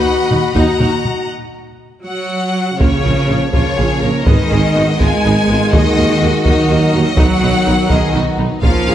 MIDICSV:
0, 0, Header, 1, 10, 480
1, 0, Start_track
1, 0, Tempo, 497925
1, 1246, Time_signature, 6, 3, 24, 8
1, 2695, Tempo, 486618
1, 8764, End_track
2, 0, Start_track
2, 0, Title_t, "Violin section"
2, 0, Program_c, 0, 48
2, 0, Note_on_c, 0, 78, 90
2, 512, Note_off_c, 0, 78, 0
2, 524, Note_on_c, 0, 78, 73
2, 1230, Note_off_c, 0, 78, 0
2, 1981, Note_on_c, 0, 78, 77
2, 2658, Note_off_c, 0, 78, 0
2, 2703, Note_on_c, 0, 73, 76
2, 3412, Note_off_c, 0, 73, 0
2, 3423, Note_on_c, 0, 73, 77
2, 4128, Note_off_c, 0, 73, 0
2, 4142, Note_on_c, 0, 75, 79
2, 4857, Note_off_c, 0, 75, 0
2, 4885, Note_on_c, 0, 80, 84
2, 5598, Note_off_c, 0, 80, 0
2, 5601, Note_on_c, 0, 75, 91
2, 6295, Note_off_c, 0, 75, 0
2, 6311, Note_on_c, 0, 75, 81
2, 7008, Note_off_c, 0, 75, 0
2, 7025, Note_on_c, 0, 78, 90
2, 7737, Note_off_c, 0, 78, 0
2, 7750, Note_on_c, 0, 75, 73
2, 7980, Note_off_c, 0, 75, 0
2, 8454, Note_on_c, 0, 77, 97
2, 8764, Note_off_c, 0, 77, 0
2, 8764, End_track
3, 0, Start_track
3, 0, Title_t, "Violin section"
3, 0, Program_c, 1, 48
3, 0, Note_on_c, 1, 75, 61
3, 0, Note_on_c, 1, 83, 66
3, 528, Note_off_c, 1, 83, 0
3, 532, Note_on_c, 1, 82, 61
3, 1247, Note_off_c, 1, 75, 0
3, 1248, Note_off_c, 1, 82, 0
3, 3416, Note_on_c, 1, 65, 54
3, 3641, Note_off_c, 1, 65, 0
3, 3662, Note_on_c, 1, 68, 56
3, 3901, Note_off_c, 1, 68, 0
3, 3903, Note_on_c, 1, 70, 52
3, 4142, Note_off_c, 1, 70, 0
3, 4142, Note_on_c, 1, 71, 62
3, 4383, Note_off_c, 1, 71, 0
3, 4384, Note_on_c, 1, 68, 60
3, 4625, Note_on_c, 1, 66, 52
3, 4628, Note_off_c, 1, 68, 0
3, 4870, Note_off_c, 1, 66, 0
3, 4874, Note_on_c, 1, 65, 58
3, 5109, Note_off_c, 1, 65, 0
3, 5114, Note_on_c, 1, 63, 53
3, 5348, Note_off_c, 1, 63, 0
3, 5369, Note_on_c, 1, 65, 58
3, 5595, Note_on_c, 1, 66, 68
3, 5600, Note_off_c, 1, 65, 0
3, 7020, Note_off_c, 1, 66, 0
3, 7026, Note_on_c, 1, 63, 57
3, 7723, Note_off_c, 1, 63, 0
3, 7736, Note_on_c, 1, 68, 66
3, 7968, Note_off_c, 1, 68, 0
3, 7972, Note_on_c, 1, 66, 56
3, 8207, Note_on_c, 1, 63, 58
3, 8211, Note_off_c, 1, 66, 0
3, 8449, Note_off_c, 1, 63, 0
3, 8450, Note_on_c, 1, 65, 61
3, 8688, Note_off_c, 1, 65, 0
3, 8697, Note_on_c, 1, 68, 67
3, 8764, Note_off_c, 1, 68, 0
3, 8764, End_track
4, 0, Start_track
4, 0, Title_t, "Viola section"
4, 0, Program_c, 2, 48
4, 299, Note_on_c, 2, 63, 51
4, 300, Note_on_c, 2, 66, 51
4, 376, Note_off_c, 2, 63, 0
4, 377, Note_off_c, 2, 66, 0
4, 534, Note_on_c, 2, 63, 62
4, 535, Note_off_c, 2, 63, 0
4, 535, Note_on_c, 2, 63, 65
4, 753, Note_off_c, 2, 63, 0
4, 771, Note_on_c, 2, 63, 52
4, 774, Note_on_c, 2, 70, 50
4, 849, Note_off_c, 2, 63, 0
4, 852, Note_off_c, 2, 70, 0
4, 2699, Note_on_c, 2, 58, 56
4, 2699, Note_on_c, 2, 65, 53
4, 2777, Note_off_c, 2, 58, 0
4, 2778, Note_off_c, 2, 65, 0
4, 2937, Note_on_c, 2, 65, 49
4, 2938, Note_on_c, 2, 58, 42
4, 3016, Note_off_c, 2, 65, 0
4, 3017, Note_off_c, 2, 58, 0
4, 3176, Note_on_c, 2, 65, 43
4, 3177, Note_on_c, 2, 58, 43
4, 3255, Note_off_c, 2, 65, 0
4, 3256, Note_off_c, 2, 58, 0
4, 3424, Note_on_c, 2, 58, 51
4, 3424, Note_on_c, 2, 65, 47
4, 3503, Note_off_c, 2, 58, 0
4, 3503, Note_off_c, 2, 65, 0
4, 3664, Note_on_c, 2, 65, 50
4, 3665, Note_on_c, 2, 58, 50
4, 3743, Note_off_c, 2, 65, 0
4, 3744, Note_off_c, 2, 58, 0
4, 3900, Note_on_c, 2, 58, 46
4, 3900, Note_on_c, 2, 65, 44
4, 3979, Note_off_c, 2, 58, 0
4, 3979, Note_off_c, 2, 65, 0
4, 4138, Note_on_c, 2, 59, 53
4, 4142, Note_on_c, 2, 68, 54
4, 4217, Note_off_c, 2, 59, 0
4, 4221, Note_off_c, 2, 68, 0
4, 4386, Note_on_c, 2, 68, 47
4, 4387, Note_on_c, 2, 59, 47
4, 4465, Note_off_c, 2, 68, 0
4, 4466, Note_off_c, 2, 59, 0
4, 4630, Note_on_c, 2, 59, 47
4, 4630, Note_on_c, 2, 68, 46
4, 4709, Note_off_c, 2, 59, 0
4, 4709, Note_off_c, 2, 68, 0
4, 4867, Note_on_c, 2, 59, 50
4, 4872, Note_on_c, 2, 68, 51
4, 4946, Note_off_c, 2, 59, 0
4, 4951, Note_off_c, 2, 68, 0
4, 5112, Note_on_c, 2, 68, 49
4, 5113, Note_on_c, 2, 59, 52
4, 5190, Note_off_c, 2, 68, 0
4, 5192, Note_off_c, 2, 59, 0
4, 5349, Note_on_c, 2, 59, 48
4, 5350, Note_on_c, 2, 68, 46
4, 5428, Note_off_c, 2, 59, 0
4, 5429, Note_off_c, 2, 68, 0
4, 5587, Note_on_c, 2, 66, 57
4, 5588, Note_on_c, 2, 58, 55
4, 5666, Note_off_c, 2, 66, 0
4, 5667, Note_off_c, 2, 58, 0
4, 5836, Note_on_c, 2, 58, 48
4, 5836, Note_on_c, 2, 66, 43
4, 5914, Note_off_c, 2, 58, 0
4, 5915, Note_off_c, 2, 66, 0
4, 6070, Note_on_c, 2, 58, 49
4, 6073, Note_on_c, 2, 66, 46
4, 6149, Note_off_c, 2, 58, 0
4, 6152, Note_off_c, 2, 66, 0
4, 6308, Note_on_c, 2, 58, 48
4, 6311, Note_on_c, 2, 66, 52
4, 6387, Note_off_c, 2, 58, 0
4, 6390, Note_off_c, 2, 66, 0
4, 6547, Note_on_c, 2, 58, 51
4, 6548, Note_on_c, 2, 66, 49
4, 6626, Note_off_c, 2, 58, 0
4, 6627, Note_off_c, 2, 66, 0
4, 6783, Note_on_c, 2, 58, 52
4, 6787, Note_on_c, 2, 66, 51
4, 6862, Note_off_c, 2, 58, 0
4, 6865, Note_off_c, 2, 66, 0
4, 7023, Note_on_c, 2, 63, 59
4, 7024, Note_on_c, 2, 59, 61
4, 7102, Note_off_c, 2, 63, 0
4, 7103, Note_off_c, 2, 59, 0
4, 7257, Note_on_c, 2, 63, 45
4, 7260, Note_on_c, 2, 59, 55
4, 7336, Note_off_c, 2, 63, 0
4, 7339, Note_off_c, 2, 59, 0
4, 7489, Note_on_c, 2, 63, 45
4, 7495, Note_on_c, 2, 59, 51
4, 7568, Note_off_c, 2, 63, 0
4, 7574, Note_off_c, 2, 59, 0
4, 7733, Note_on_c, 2, 63, 47
4, 7734, Note_on_c, 2, 59, 53
4, 7812, Note_off_c, 2, 63, 0
4, 7813, Note_off_c, 2, 59, 0
4, 7972, Note_on_c, 2, 63, 53
4, 7973, Note_on_c, 2, 59, 49
4, 8051, Note_off_c, 2, 63, 0
4, 8052, Note_off_c, 2, 59, 0
4, 8208, Note_on_c, 2, 63, 49
4, 8211, Note_on_c, 2, 59, 48
4, 8287, Note_off_c, 2, 63, 0
4, 8290, Note_off_c, 2, 59, 0
4, 8454, Note_on_c, 2, 61, 58
4, 8456, Note_on_c, 2, 65, 63
4, 8533, Note_off_c, 2, 61, 0
4, 8535, Note_off_c, 2, 65, 0
4, 8695, Note_on_c, 2, 61, 52
4, 8695, Note_on_c, 2, 65, 53
4, 8764, Note_off_c, 2, 61, 0
4, 8764, Note_off_c, 2, 65, 0
4, 8764, End_track
5, 0, Start_track
5, 0, Title_t, "French horn section"
5, 0, Program_c, 3, 60
5, 0, Note_on_c, 3, 66, 99
5, 518, Note_off_c, 3, 66, 0
5, 535, Note_on_c, 3, 66, 95
5, 1235, Note_off_c, 3, 66, 0
5, 2706, Note_on_c, 3, 58, 61
5, 4106, Note_off_c, 3, 58, 0
5, 4128, Note_on_c, 3, 59, 62
5, 4135, Note_on_c, 3, 63, 64
5, 5556, Note_off_c, 3, 59, 0
5, 5589, Note_on_c, 3, 58, 60
5, 7003, Note_off_c, 3, 63, 0
5, 7013, Note_on_c, 3, 59, 65
5, 7015, Note_on_c, 3, 63, 59
5, 7018, Note_off_c, 3, 58, 0
5, 8419, Note_off_c, 3, 59, 0
5, 8467, Note_on_c, 3, 61, 60
5, 8764, Note_off_c, 3, 61, 0
5, 8764, Note_off_c, 3, 63, 0
5, 8764, End_track
6, 0, Start_track
6, 0, Title_t, "Trombone section"
6, 0, Program_c, 4, 61
6, 2705, Note_on_c, 4, 46, 54
6, 2708, Note_on_c, 4, 53, 55
6, 4105, Note_off_c, 4, 46, 0
6, 4107, Note_off_c, 4, 53, 0
6, 4149, Note_on_c, 4, 56, 57
6, 4153, Note_on_c, 4, 51, 62
6, 6269, Note_off_c, 4, 56, 0
6, 6307, Note_on_c, 4, 54, 66
6, 6986, Note_off_c, 4, 51, 0
6, 7015, Note_on_c, 4, 51, 63
6, 8420, Note_off_c, 4, 51, 0
6, 8439, Note_on_c, 4, 53, 63
6, 8442, Note_on_c, 4, 58, 64
6, 8452, Note_off_c, 4, 54, 0
6, 8764, Note_off_c, 4, 53, 0
6, 8764, Note_off_c, 4, 58, 0
6, 8764, End_track
7, 0, Start_track
7, 0, Title_t, "Cello section"
7, 0, Program_c, 5, 48
7, 291, Note_on_c, 5, 39, 51
7, 368, Note_off_c, 5, 39, 0
7, 528, Note_on_c, 5, 39, 64
7, 605, Note_off_c, 5, 39, 0
7, 764, Note_on_c, 5, 39, 47
7, 841, Note_off_c, 5, 39, 0
7, 1976, Note_on_c, 5, 54, 59
7, 2656, Note_off_c, 5, 54, 0
7, 2696, Note_on_c, 5, 49, 76
7, 3415, Note_off_c, 5, 49, 0
7, 3427, Note_on_c, 5, 49, 52
7, 4130, Note_off_c, 5, 49, 0
7, 4147, Note_on_c, 5, 51, 70
7, 4860, Note_off_c, 5, 51, 0
7, 4870, Note_on_c, 5, 56, 67
7, 5576, Note_off_c, 5, 56, 0
7, 5587, Note_on_c, 5, 51, 74
7, 6290, Note_off_c, 5, 51, 0
7, 6302, Note_on_c, 5, 51, 58
7, 7003, Note_off_c, 5, 51, 0
7, 7018, Note_on_c, 5, 54, 83
7, 7719, Note_off_c, 5, 54, 0
7, 7734, Note_on_c, 5, 51, 65
7, 7972, Note_off_c, 5, 51, 0
7, 8455, Note_on_c, 5, 53, 81
7, 8764, Note_off_c, 5, 53, 0
7, 8764, End_track
8, 0, Start_track
8, 0, Title_t, "Double bass section"
8, 0, Program_c, 6, 48
8, 301, Note_on_c, 6, 39, 47
8, 378, Note_off_c, 6, 39, 0
8, 531, Note_on_c, 6, 39, 72
8, 609, Note_off_c, 6, 39, 0
8, 769, Note_on_c, 6, 39, 54
8, 847, Note_off_c, 6, 39, 0
8, 2706, Note_on_c, 6, 34, 63
8, 2785, Note_off_c, 6, 34, 0
8, 2943, Note_on_c, 6, 34, 55
8, 3022, Note_off_c, 6, 34, 0
8, 3191, Note_on_c, 6, 34, 49
8, 3270, Note_off_c, 6, 34, 0
8, 3424, Note_on_c, 6, 34, 50
8, 3503, Note_off_c, 6, 34, 0
8, 3668, Note_on_c, 6, 34, 59
8, 3747, Note_off_c, 6, 34, 0
8, 3905, Note_on_c, 6, 34, 55
8, 3984, Note_off_c, 6, 34, 0
8, 4145, Note_on_c, 6, 32, 64
8, 4224, Note_off_c, 6, 32, 0
8, 4388, Note_on_c, 6, 32, 53
8, 4466, Note_off_c, 6, 32, 0
8, 4630, Note_on_c, 6, 32, 54
8, 4708, Note_off_c, 6, 32, 0
8, 4873, Note_on_c, 6, 32, 53
8, 4952, Note_off_c, 6, 32, 0
8, 5121, Note_on_c, 6, 32, 57
8, 5200, Note_off_c, 6, 32, 0
8, 5354, Note_on_c, 6, 32, 57
8, 5432, Note_off_c, 6, 32, 0
8, 5589, Note_on_c, 6, 39, 63
8, 5668, Note_off_c, 6, 39, 0
8, 5829, Note_on_c, 6, 39, 56
8, 5908, Note_off_c, 6, 39, 0
8, 6069, Note_on_c, 6, 39, 56
8, 6148, Note_off_c, 6, 39, 0
8, 6309, Note_on_c, 6, 39, 54
8, 6388, Note_off_c, 6, 39, 0
8, 6545, Note_on_c, 6, 39, 62
8, 6624, Note_off_c, 6, 39, 0
8, 6784, Note_on_c, 6, 39, 54
8, 6863, Note_off_c, 6, 39, 0
8, 7021, Note_on_c, 6, 35, 69
8, 7100, Note_off_c, 6, 35, 0
8, 7259, Note_on_c, 6, 35, 57
8, 7338, Note_off_c, 6, 35, 0
8, 7500, Note_on_c, 6, 35, 50
8, 7579, Note_off_c, 6, 35, 0
8, 7734, Note_on_c, 6, 35, 57
8, 7813, Note_off_c, 6, 35, 0
8, 7972, Note_on_c, 6, 35, 65
8, 8051, Note_off_c, 6, 35, 0
8, 8203, Note_on_c, 6, 35, 64
8, 8282, Note_off_c, 6, 35, 0
8, 8452, Note_on_c, 6, 34, 69
8, 8531, Note_off_c, 6, 34, 0
8, 8693, Note_on_c, 6, 34, 59
8, 8764, Note_off_c, 6, 34, 0
8, 8764, End_track
9, 0, Start_track
9, 0, Title_t, "Tuba"
9, 0, Program_c, 7, 58
9, 304, Note_on_c, 7, 39, 48
9, 396, Note_off_c, 7, 39, 0
9, 535, Note_on_c, 7, 39, 67
9, 629, Note_off_c, 7, 39, 0
9, 778, Note_on_c, 7, 39, 43
9, 871, Note_off_c, 7, 39, 0
9, 2702, Note_on_c, 7, 34, 59
9, 2797, Note_off_c, 7, 34, 0
9, 2944, Note_on_c, 7, 34, 48
9, 3039, Note_off_c, 7, 34, 0
9, 3185, Note_on_c, 7, 34, 47
9, 3280, Note_off_c, 7, 34, 0
9, 3426, Note_on_c, 7, 34, 52
9, 3521, Note_off_c, 7, 34, 0
9, 3668, Note_on_c, 7, 34, 50
9, 3762, Note_off_c, 7, 34, 0
9, 3905, Note_on_c, 7, 34, 50
9, 4000, Note_off_c, 7, 34, 0
9, 4142, Note_on_c, 7, 32, 59
9, 4239, Note_off_c, 7, 32, 0
9, 4387, Note_on_c, 7, 32, 53
9, 4484, Note_off_c, 7, 32, 0
9, 4625, Note_on_c, 7, 32, 47
9, 4723, Note_off_c, 7, 32, 0
9, 4866, Note_on_c, 7, 32, 54
9, 4964, Note_off_c, 7, 32, 0
9, 5111, Note_on_c, 7, 32, 55
9, 5207, Note_off_c, 7, 32, 0
9, 5353, Note_on_c, 7, 32, 54
9, 5448, Note_off_c, 7, 32, 0
9, 5589, Note_on_c, 7, 39, 64
9, 5685, Note_off_c, 7, 39, 0
9, 5828, Note_on_c, 7, 39, 60
9, 5923, Note_off_c, 7, 39, 0
9, 6060, Note_on_c, 7, 39, 54
9, 6157, Note_off_c, 7, 39, 0
9, 6295, Note_on_c, 7, 39, 60
9, 6392, Note_off_c, 7, 39, 0
9, 6531, Note_on_c, 7, 39, 59
9, 6628, Note_off_c, 7, 39, 0
9, 6772, Note_on_c, 7, 39, 54
9, 6869, Note_off_c, 7, 39, 0
9, 7008, Note_on_c, 7, 35, 56
9, 7106, Note_off_c, 7, 35, 0
9, 7244, Note_on_c, 7, 35, 58
9, 7342, Note_off_c, 7, 35, 0
9, 7483, Note_on_c, 7, 35, 51
9, 7581, Note_off_c, 7, 35, 0
9, 7729, Note_on_c, 7, 35, 64
9, 7825, Note_off_c, 7, 35, 0
9, 7960, Note_on_c, 7, 35, 60
9, 8058, Note_off_c, 7, 35, 0
9, 8207, Note_on_c, 7, 35, 61
9, 8303, Note_off_c, 7, 35, 0
9, 8444, Note_on_c, 7, 34, 64
9, 8542, Note_off_c, 7, 34, 0
9, 8689, Note_on_c, 7, 34, 62
9, 8764, Note_off_c, 7, 34, 0
9, 8764, End_track
10, 0, Start_track
10, 0, Title_t, "Taiko and cinematic ensemble drums"
10, 299, Note_on_c, 9, 45, 50
10, 395, Note_off_c, 9, 45, 0
10, 535, Note_on_c, 9, 41, 68
10, 632, Note_off_c, 9, 41, 0
10, 775, Note_on_c, 9, 45, 58
10, 872, Note_off_c, 9, 45, 0
10, 1014, Note_on_c, 9, 45, 39
10, 1110, Note_off_c, 9, 45, 0
10, 2704, Note_on_c, 9, 41, 76
10, 2802, Note_off_c, 9, 41, 0
10, 3422, Note_on_c, 9, 41, 72
10, 3520, Note_off_c, 9, 41, 0
10, 4144, Note_on_c, 9, 41, 89
10, 4243, Note_off_c, 9, 41, 0
10, 4872, Note_on_c, 9, 41, 69
10, 4970, Note_off_c, 9, 41, 0
10, 5591, Note_on_c, 9, 41, 89
10, 5690, Note_off_c, 9, 41, 0
10, 6303, Note_on_c, 9, 41, 79
10, 6402, Note_off_c, 9, 41, 0
10, 7010, Note_on_c, 9, 41, 90
10, 7109, Note_off_c, 9, 41, 0
10, 7729, Note_on_c, 9, 41, 72
10, 7827, Note_off_c, 9, 41, 0
10, 8452, Note_on_c, 9, 41, 77
10, 8551, Note_off_c, 9, 41, 0
10, 8764, End_track
0, 0, End_of_file